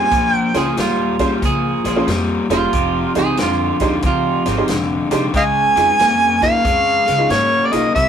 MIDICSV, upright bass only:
0, 0, Header, 1, 2, 480
1, 0, Start_track
1, 0, Tempo, 653595
1, 87, Time_signature, 4, 2, 24, 8
1, 5938, End_track
2, 0, Start_track
2, 0, Title_t, "Upright bass"
2, 0, Program_c, 0, 32
2, 82, Note_on_c, 0, 34, 85
2, 302, Note_off_c, 0, 34, 0
2, 397, Note_on_c, 0, 37, 78
2, 515, Note_off_c, 0, 37, 0
2, 564, Note_on_c, 0, 39, 80
2, 900, Note_off_c, 0, 39, 0
2, 1044, Note_on_c, 0, 37, 83
2, 1263, Note_off_c, 0, 37, 0
2, 1357, Note_on_c, 0, 34, 83
2, 1475, Note_off_c, 0, 34, 0
2, 1521, Note_on_c, 0, 41, 80
2, 1741, Note_off_c, 0, 41, 0
2, 1834, Note_on_c, 0, 28, 78
2, 1953, Note_off_c, 0, 28, 0
2, 2003, Note_on_c, 0, 29, 80
2, 2222, Note_off_c, 0, 29, 0
2, 2317, Note_on_c, 0, 37, 77
2, 2435, Note_off_c, 0, 37, 0
2, 2484, Note_on_c, 0, 41, 77
2, 2703, Note_off_c, 0, 41, 0
2, 2793, Note_on_c, 0, 39, 80
2, 2912, Note_off_c, 0, 39, 0
2, 2960, Note_on_c, 0, 37, 85
2, 3181, Note_off_c, 0, 37, 0
2, 3274, Note_on_c, 0, 32, 78
2, 3393, Note_off_c, 0, 32, 0
2, 3441, Note_on_c, 0, 29, 83
2, 3661, Note_off_c, 0, 29, 0
2, 3752, Note_on_c, 0, 36, 82
2, 3872, Note_off_c, 0, 36, 0
2, 3921, Note_on_c, 0, 37, 80
2, 4141, Note_off_c, 0, 37, 0
2, 4234, Note_on_c, 0, 41, 71
2, 4353, Note_off_c, 0, 41, 0
2, 4399, Note_on_c, 0, 41, 79
2, 4738, Note_off_c, 0, 41, 0
2, 4881, Note_on_c, 0, 41, 82
2, 5101, Note_off_c, 0, 41, 0
2, 5198, Note_on_c, 0, 37, 77
2, 5316, Note_off_c, 0, 37, 0
2, 5362, Note_on_c, 0, 44, 84
2, 5582, Note_off_c, 0, 44, 0
2, 5676, Note_on_c, 0, 35, 79
2, 5795, Note_off_c, 0, 35, 0
2, 5842, Note_on_c, 0, 36, 83
2, 5938, Note_off_c, 0, 36, 0
2, 5938, End_track
0, 0, End_of_file